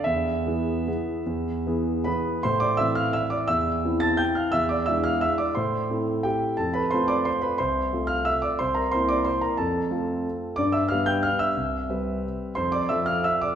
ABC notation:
X:1
M:3/4
L:1/8
Q:1/4=176
K:Am
V:1 name="Grand piano"
e6- | e4 [Bb]2 | [cc'] [dd'] [ee'] [ff'] [ee'] [dd'] | [ee']3 [aa'] [gg'] [ff'] |
[ee'] [dd'] [ee'] [ff'] [ee'] [dd'] | [cc']3 z [Gg]2 | [Aa] [Bb] [cc'] [dd'] [cc'] [Bb] | [cc']3 [ff'] [ee'] [dd'] |
[cc'] [_B_b] [cc'] [dd'] [cc'] [Bb] | [Aa]3 z3 | [dd'] [ee'] [ff'] [gg'] [ff'] [ee']- | [ee']6 |
[cc'] [dd'] [ee'] [ff'] [ee'] [dd'] |]
V:2 name="Grand piano"
E,,2 [E,B,^G]2 [E,B,G]2 | E,,2 [E,B,^G]2 [E,B,G]2 | A,,2 [E,CE]4 | E,,2 [E,CE]4 |
E,,2 [^G,DE]4 | A,,2 [A,CE]4 | F,,2 [A,CF]4 | C,,2 [A,CF]4 |
C,,2 [_B,CE]4 | F,,2 [A,CF]4 | G,,2 [G,B,B]4 | C,,2 [G,CB]4 |
F,,2 [F,CA]4 |]